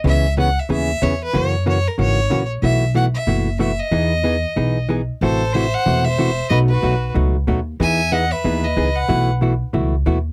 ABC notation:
X:1
M:4/4
L:1/8
Q:"Swing" 1/4=186
K:E
V:1 name="Fiddle"
e2 f e e2 c B | c2 c ^A c3 z | e2 f e3 e d- | d6 z2 |
=c2 e f2 e3 | d B3 z4 | g2 f e2 d2 f- | f z6 z |]
V:2 name="Fiddle"
z8 | z8 | z8 | z8 |
A2 =c c2 c3 | B F3 z4 | e2 d B2 B2 B- | B z6 z |]
V:3 name="Hollow-body jazz guitar"
[C,E,B,CG] z [C,E,B,CG] z [C,E,B,CG] z [C,E,B,CG] z | [C,E,^A,CF] z [C,E,A,CF] z [C,E,A,CF] z [C,E,A,CF] z | [B,,E,A,EF] z [B,,E,A,EF] z [B,,E,A,EF] z [B,,E,A,EF] z | [E,B,DG] z [E,B,DG] z [E,B,DG] z [E,B,DG] z |
[=C,E,A,EF] z [C,E,A,EF] z [C,E,A,EF] z [C,E,A,EF] z | [B,,F,A,DF] z [B,,F,A,DF] z [B,,F,A,DF] z [B,,F,A,DF] z | [E,B,DG] z [E,B,DG] z [E,B,DG] z [E,B,DG] z | [B,,E,A,EF] z [B,,E,A,EF] z [B,,E,A,EF] z [B,,E,A,EF] z |]
V:4 name="Upright bass" clef=bass
C,,4 D,,2 E,,2 | F,,4 G,,,2 ^A,,,2 | B,,,4 F,,,4 | E,,4 B,,,4 |
A,,,4 E,,,4 | B,,,2 B,,,2 C,,2 D,,2 | E,,4 D,,2 C,,2 | B,,,4 C,,2 D,,2 |]